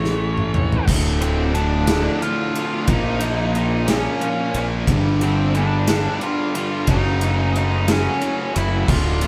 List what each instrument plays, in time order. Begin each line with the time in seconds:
Already playing: fingered electric bass A1, distorted electric guitar A2 E3 A3, lead electric guitar C#5
0.05 snare
0.38 mid tom
0.54 mid tom
0.72 floor tom
0.86 fingered electric bass D1, distorted electric guitar D2 A2 D3, string machine F3 A3 D4, kick, crash
1.19 distorted electric guitar D2, overdriven electric guitar A2, lead electric guitar C4 C5, ride
1.23 distorted electric guitar A2 D3
1.55 distorted electric guitar D2 A2 D3, lead electric guitar D4 D5, ride
1.87 distorted electric guitar D2 A2 D3, snare, ride
2.22 distorted electric guitar D2 A2 D3, lead electric guitar F4 F5, ride
2.54 distorted electric guitar D2 A2 D3, ride
2.87 fingered electric bass A#1, distorted electric guitar A#2 F3 A#3, string machine A#3 C#4, lead electric guitar D#4 D#5, kick, ride
3.20 distorted electric guitar A#2 F3 A#3, ride
3.54 distorted electric guitar A#2 F3 A#3, lead electric guitar D#4 D#5, ride
3.88 distorted electric guitar A#2 F3 A#3, lead electric guitar C#4 C#5, snare, ride
4.20 distorted electric guitar A#2 F3 A#3, ride
4.54 fingered electric bass A#1, distorted electric guitar A#2 F3 A#3, ride
4.87 fingered electric bass G1, distorted electric guitar G2 D3 G3, string machine G3 D4, kick, ride
5.21 distorted electric guitar G2 D3 G3, lead electric guitar C4 C5, ride
5.55 distorted electric guitar G2 D3 G3, lead electric guitar D4 D5, ride
5.87 distorted electric guitar G2 D3 G3, snare, ride
6.21 distorted electric guitar G2 D3 G3, lead electric guitar F4 F5, ride
6.55 distorted electric guitar G2 D3 G3, lead electric guitar F4 F5, ride
6.87 fingered electric bass F#1, distorted electric guitar F#2 C#3, string machine F#3 A3 C#4, lead electric guitar D#4 D#5, kick, ride
6.91 distorted electric guitar F#3
7.21 distorted electric guitar F#2 C#3 F#3, ride
7.56 distorted electric guitar F#2 C#3 F#3, lead electric guitar D#4 D#5, ride
7.88 distorted electric guitar F#2 C#3 F#3, lead electric guitar C#4 C#5, snare, ride
8.21 distorted electric guitar F#2 C#3 F#3, ride
8.56 fingered electric bass F#1, distorted electric guitar F#2 C#3 F#3, lead electric guitar E4 E5, ride
8.88 fingered electric bass D1, distorted electric guitar D2 A2 D3, string machine F3 D4, lead electric guitar F4 F5, kick, crash
9.21 distorted electric guitar D2 A2, overdriven electric guitar D3, ride